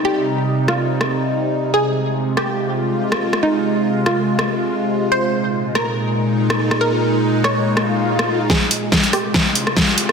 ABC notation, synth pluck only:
X:1
M:4/4
L:1/8
Q:"Swing 16ths" 1/4=142
K:Fm
V:1 name="Synth pluck"
G3 F z4 | A3 G3 z2 | E3 F z4 | c3 B3 z2 |
B3 d z4 | A3 G3 z2 |]